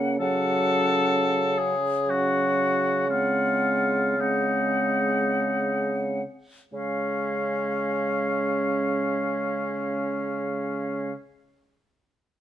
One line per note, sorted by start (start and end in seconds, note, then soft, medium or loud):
0.00 0.16 C#3 medium
0.00 0.16 A#3 soft
0.00 0.17 C#4 medium
0.00 0.17 F#5 soft
0.19 6.22 C#3 soft
0.19 1.74 F#3 medium
0.19 1.74 C#4 soft
0.19 1.60 A4 medium
0.19 1.74 F#5 soft
1.58 2.11 G#4 medium
2.07 3.05 F#3 soft
2.07 3.12 C#4 soft
2.07 3.09 F#4 medium
2.07 3.06 F#5 soft
3.09 4.15 G#3 soft
3.09 4.18 C4 soft
3.09 4.21 F4 medium
3.09 4.16 F#5 soft
4.18 6.22 G#3 soft
4.18 6.22 C4 soft
4.18 6.06 D#4 soft
4.18 6.22 F#5 soft
6.73 11.13 C#3 soft
6.73 11.12 G#3 soft
6.73 11.12 C#4 soft
6.73 11.13 C#4 soft
6.73 11.12 F5 soft